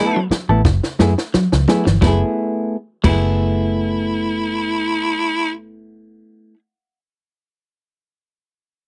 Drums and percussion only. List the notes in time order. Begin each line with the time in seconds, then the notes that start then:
0.31 snare, muted conga
0.65 kick, snare, low conga
0.83 snare
1.00 snare, muted conga
1.18 snare
1.34 snare, high conga
1.52 snare
1.68 snare, high conga
1.87 snare
2.02 kick, snare, muted conga
3.04 kick, crash, muted conga